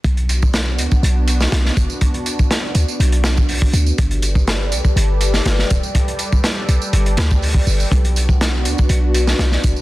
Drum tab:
HH |xxx-x-x-x-x-x-x-|xxx-x-x-xxx-o-x-|xxx-x-x-x-x-x-x-|xxx-x-x-xxx-o---|
TB |x-xxx-xxx-xxx-xx|x-xxx-xxx-xxx-xx|x-xxx-xxx-xxx-xx|x-xxx-xxx-xxx-xx|
SD |----o------ooo--|----o-----o-----|----o------ooo--|----o-----o-----|
BD |o--o---o------o-|o--o-------o-o--|o--o---o------o-|o--o-------o-o--|

HH |xxx-x-x-x-x-x-x-|
TB |x-xxx-xxx-xxx-xx|
SD |----o------ooo--|
BD |o--o---o------o-|